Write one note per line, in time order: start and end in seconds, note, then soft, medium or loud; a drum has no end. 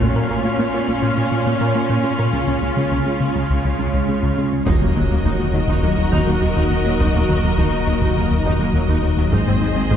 0.00 0.10 A#2 medium
0.00 2.30 A#2 soft
0.00 2.34 A#3 medium
0.00 0.10 A#3 medium
0.00 2.33 C#4 medium
0.00 4.47 C#4 soft
0.00 4.43 F4 soft
0.00 4.67 F4 medium
0.00 2.33 C#5 medium
0.00 taiko soft
0.15 0.24 A#2 medium
0.15 0.25 A#4 soft
0.29 0.38 A#2 soft
0.29 0.39 A#4 soft
0.45 0.54 A#3 medium
0.45 0.54 F4 soft
0.59 0.68 A#2 medium
0.59 0.68 A#3 medium
0.74 0.83 A#3 medium
0.74 0.83 F4 soft
0.88 0.97 A#3 soft
0.88 taiko soft
1.02 1.11 A#2 medium
1.02 1.12 A#3 medium
1.17 1.26 A#2 soft
1.32 1.41 A#2 soft
1.46 1.55 A#2 medium
1.46 1.55 A#3 medium
1.60 1.70 A#2 soft
1.60 1.70 A#4 soft
1.75 1.84 A#3 soft
1.75 1.84 F4 soft
1.90 1.99 A#2 medium
1.90 1.99 A#3 medium
2.04 2.13 A#3 soft
2.04 2.13 F4 soft
2.19 2.28 A#2 soft
2.19 2.28 A#4 soft
2.33 2.42 C#2 medium
2.33 2.43 C#3 medium
2.33 4.43 C#3 soft
2.33 4.67 G#3 medium
2.33 4.63 C#4 medium
2.33 4.63 C#5 medium
2.47 2.56 C#2 soft
2.47 2.57 C#4 soft
2.62 2.71 C#2 soft
2.62 2.72 C#4 soft
2.77 2.86 C#3 medium
2.77 2.86 G#3 soft
2.91 3.00 C#2 medium
2.91 3.01 C#3 medium
3.06 3.15 C#3 soft
3.06 3.16 G#3 soft
3.20 3.30 C#3 soft
3.35 3.44 C#2 medium
3.35 3.44 C#3 medium
3.50 3.59 C#2 soft
3.64 3.73 C#2 soft
3.79 3.88 C#2 medium
3.79 3.88 C#3 medium
3.94 4.03 C#2 soft
3.94 4.03 C#4 soft
4.08 4.17 C#3 soft
4.08 4.18 G#3 soft
4.23 4.32 C#2 medium
4.23 4.32 C#3 medium
4.37 4.46 C#3 soft
4.37 4.47 G#3 soft
4.52 4.61 C#2 soft
4.52 4.62 C#4 soft
4.66 9.35 D#1 medium
4.66 4.73 D#2 soft
4.66 4.76 D#2 medium
4.66 4.76 D#3 medium
4.66 9.29 F#3 medium
4.66 9.29 A#3 medium
4.66 9.29 D#4 medium
4.66 4.72 D#4 soft
4.66 9.29 F#4 soft
4.66 9.29 A#4 soft
4.66 9.28 D#5 soft
4.66 9.29 D#5 medium
4.66 taiko medium
4.66 impact soft
4.81 4.87 D#2 soft
4.81 4.90 D#2 medium
4.81 4.91 F#3 medium
4.81 4.87 A#3 soft
4.95 5.02 D#2 soft
4.95 5.05 D#3 soft
4.95 5.01 F#3 soft
4.95 5.05 A#3 medium
5.10 5.20 D#2 medium
5.10 5.17 D#2 soft
5.10 5.20 F#3 soft
5.10 5.16 A#3 soft
5.25 5.34 D#2 medium
5.25 5.31 D#2 medium
5.25 5.34 D#3 medium
5.25 5.31 D#4 soft
5.25 taiko medium
5.39 5.48 D#2 medium
5.53 5.62 D#2 soft
5.53 5.60 D#2 soft
5.53 5.60 F#3 soft
5.53 5.63 D#4 soft
5.68 5.77 D#2 medium
5.68 5.75 D#2 medium
5.68 5.78 D#3 medium
5.68 5.74 D#4 soft
5.68 taiko medium
5.83 5.92 D#2 soft
5.83 5.89 D#2 soft
5.83 5.93 F#3 soft
5.83 5.89 A#3 soft
5.98 6.06 D#2 soft
6.12 6.21 D#2 medium
6.12 6.19 D#2 medium
6.12 6.22 D#3 medium
6.12 6.18 D#4 medium
6.12 taiko medium
6.27 6.36 D#2 soft
6.27 6.34 D#2 soft
6.27 6.36 F#3 medium
6.27 6.33 A#3 soft
6.41 6.50 D#2 medium
6.41 6.49 D#2 soft
6.41 6.47 F#3 soft
6.41 6.51 F#3 soft
6.56 6.65 D#2 medium
6.56 6.63 D#2 soft
6.56 6.65 D#3 medium
6.56 6.62 D#4 soft
6.71 6.80 D#2 soft
6.84 6.95 D#2 soft
6.84 6.93 D#2 soft
6.84 6.91 F#3 soft
6.84 6.94 D#4 medium
6.99 7.09 D#2 medium
6.99 7.07 D#2 medium
6.99 7.09 D#3 medium
6.99 7.05 D#4 soft
6.99 taiko medium
7.14 7.24 D#2 medium
7.14 7.22 D#2 soft
7.14 7.23 F#3 soft
7.14 7.20 A#3 soft
7.29 7.36 D#2 soft
7.29 7.38 D#3 soft
7.29 7.35 F#3 soft
7.29 7.38 A#3 soft
7.43 7.53 D#2 soft
7.43 7.51 D#2 soft
7.43 7.52 F#3 soft
7.43 7.49 A#3 soft
7.58 7.67 D#2 medium
7.58 7.65 D#2 medium
7.58 7.67 D#3 medium
7.58 7.64 D#4 medium
7.58 taiko medium
7.73 7.82 D#2 medium
7.87 7.96 D#2 medium
7.87 7.94 D#2 soft
7.87 7.93 F#3 soft
7.87 7.96 D#4 soft
8.01 8.11 D#2 medium
8.01 8.09 D#2 medium
8.01 8.10 D#3 medium
8.01 8.08 D#4 soft
8.01 taiko medium
8.16 8.25 D#2 medium
8.16 8.23 D#2 soft
8.16 8.25 F#3 medium
8.16 8.23 A#3 soft
8.30 8.39 D#2 medium
8.45 8.54 D#2 medium
8.45 8.53 D#2 medium
8.45 8.55 D#3 medium
8.45 8.52 D#4 soft
8.45 taiko medium
8.59 8.68 D#2 soft
8.59 8.67 D#2 soft
8.59 8.69 F#3 medium
8.59 8.67 A#3 soft
8.74 8.83 D#2 medium
8.74 8.81 D#2 soft
8.74 8.84 F#3 soft
8.74 8.81 F#3 soft
8.88 8.97 D#2 medium
8.88 8.96 D#2 soft
8.88 8.98 D#3 medium
8.88 8.95 D#4 soft
9.02 9.12 D#2 medium
9.17 9.26 D#2 soft
9.17 9.25 D#2 soft
9.17 9.24 F#3 soft
9.17 9.27 D#4 medium
9.32 9.97 G#1 medium
9.32 9.41 G#2 medium
9.32 9.39 G#2 medium
9.32 9.42 G#3 medium
9.32 9.97 G#3 medium
9.32 9.97 C4 medium
9.32 9.39 D#4 medium
9.32 9.97 D#4 medium
9.32 9.97 G#4 soft
9.32 9.97 C5 soft
9.32 9.97 D#5 soft
9.32 9.97 D#5 medium
9.32 taiko medium
9.47 9.56 G#2 medium
9.47 9.54 G#2 soft
9.47 9.54 C4 soft
9.47 9.57 C4 medium
9.62 9.68 G#2 soft
9.62 9.71 G#3 soft
9.62 9.68 G#3 soft
9.62 9.71 D#4 soft
9.76 9.85 G#2 soft
9.76 9.83 G#2 soft
9.76 9.82 C4 soft
9.76 9.85 C4 soft
9.91 9.97 G#2 medium
9.91 9.97 G#3 medium
9.91 9.97 D#4 soft
9.91 taiko medium